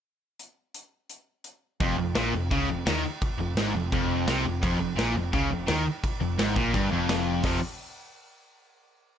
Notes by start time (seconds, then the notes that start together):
0.39 closed hi-hat
0.75 closed hi-hat
1.10 closed hi-hat
1.44 closed hi-hat
1.80 F1 F2, kick, crash
1.98 F1 F2
2.15 A#1 A#2, snare, crash
2.33 F1 F2
2.51 C#2 C#3, kick, crash
2.70 F1 F2
2.86 D#2 D#3, snare, crash
3.21 kick, crash
3.38 F1 F2
3.56 G#1, snare, crash
3.60 G#2
3.75 F1 F2
3.92 F1 F2, kick, crash
4.27 C2 C3, snare, crash
4.45 F1 F2
4.63 F1 F2, kick, crash
4.79 F1 F2
4.97 A#1 A#2, snare, crash
5.15 F1 F2
5.33 C#2 C#3, kick, crash
5.50 F1 F2
5.68 D#2 D#3, snare, crash
6.04 kick, crash
6.21 F1 F2
6.39 G#1 G#2, snare, crash
6.56 A#1 A#2, kick
6.74 G1 G2, kick, crash
6.91 F1 F2
7.09 snare, crash
7.43 F1 F2 C3 F3, kick, open hi-hat